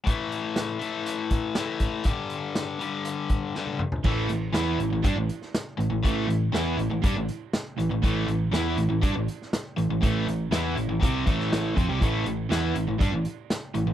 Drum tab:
CC |----------------|----------------|x---------------|----------------|
HH |x-x-x-x-x-x-x-x-|x-x-x-x-x-x-----|--x-x-x-x-x-x-x-|x-x-x-x-x-x-x-x-|
SD |----o-------o---|----o-------o---|----o------oo---|----o-------o---|
T1 |----------------|-------------o--|----------------|----------------|
T2 |----------------|--------------o-|----------------|----------------|
FT |----------------|---------------o|----------------|----------------|
BD |o---------o---o-|o---------o-----|o-------o-------|o-------o-------|

CC |----------------|----------------|----------------|
HH |x-x-x-x-x-x-x-x-|x-x-x-x-x-x-x-x-|x-x-x-x-x-x-x-x-|
SD |----o------oo---|----o------oo---|----o-------o---|
T1 |----------------|----------------|----------------|
T2 |----------------|----------------|----------------|
FT |----------------|----------------|----------------|
BD |o-------o-------|o-------o-o---o-|o-------o-------|